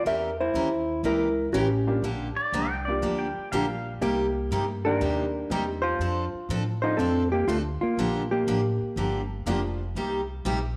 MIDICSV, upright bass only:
0, 0, Header, 1, 3, 480
1, 0, Start_track
1, 0, Key_signature, -2, "major"
1, 0, Tempo, 495295
1, 55, Time_signature, 4, 2, 24, 8
1, 10435, End_track
2, 0, Start_track
2, 0, Title_t, "Upright bass"
2, 0, Program_c, 0, 32
2, 50, Note_on_c, 0, 40, 84
2, 516, Note_off_c, 0, 40, 0
2, 522, Note_on_c, 0, 39, 94
2, 994, Note_off_c, 0, 39, 0
2, 1000, Note_on_c, 0, 37, 92
2, 1471, Note_off_c, 0, 37, 0
2, 1477, Note_on_c, 0, 33, 92
2, 1951, Note_off_c, 0, 33, 0
2, 1961, Note_on_c, 0, 34, 88
2, 2275, Note_off_c, 0, 34, 0
2, 2447, Note_on_c, 0, 36, 92
2, 2916, Note_off_c, 0, 36, 0
2, 2928, Note_on_c, 0, 38, 82
2, 3239, Note_off_c, 0, 38, 0
2, 3410, Note_on_c, 0, 34, 87
2, 3878, Note_off_c, 0, 34, 0
2, 3889, Note_on_c, 0, 36, 90
2, 4357, Note_off_c, 0, 36, 0
2, 4369, Note_on_c, 0, 43, 91
2, 4837, Note_off_c, 0, 43, 0
2, 4852, Note_on_c, 0, 39, 80
2, 5319, Note_off_c, 0, 39, 0
2, 5330, Note_on_c, 0, 40, 94
2, 5798, Note_off_c, 0, 40, 0
2, 5804, Note_on_c, 0, 41, 84
2, 6116, Note_off_c, 0, 41, 0
2, 6287, Note_on_c, 0, 45, 89
2, 6756, Note_off_c, 0, 45, 0
2, 6765, Note_on_c, 0, 41, 85
2, 7235, Note_off_c, 0, 41, 0
2, 7243, Note_on_c, 0, 38, 94
2, 7556, Note_off_c, 0, 38, 0
2, 7726, Note_on_c, 0, 34, 86
2, 8195, Note_off_c, 0, 34, 0
2, 8209, Note_on_c, 0, 33, 94
2, 8519, Note_off_c, 0, 33, 0
2, 8683, Note_on_c, 0, 31, 88
2, 9154, Note_off_c, 0, 31, 0
2, 9165, Note_on_c, 0, 29, 88
2, 9635, Note_off_c, 0, 29, 0
2, 9645, Note_on_c, 0, 36, 85
2, 10115, Note_off_c, 0, 36, 0
2, 10128, Note_on_c, 0, 34, 89
2, 10435, Note_off_c, 0, 34, 0
2, 10435, End_track
3, 0, Start_track
3, 0, Title_t, "Muted upright bass strokes"
3, 2295, Note_on_c, 9, 29, 39
3, 2392, Note_off_c, 9, 29, 0
3, 3266, Note_on_c, 9, 29, 36
3, 3363, Note_off_c, 9, 29, 0
3, 6138, Note_on_c, 9, 29, 40
3, 6234, Note_off_c, 9, 29, 0
3, 7577, Note_on_c, 9, 29, 40
3, 7674, Note_off_c, 9, 29, 0
3, 8544, Note_on_c, 9, 29, 42
3, 8641, Note_off_c, 9, 29, 0
3, 10435, End_track
0, 0, End_of_file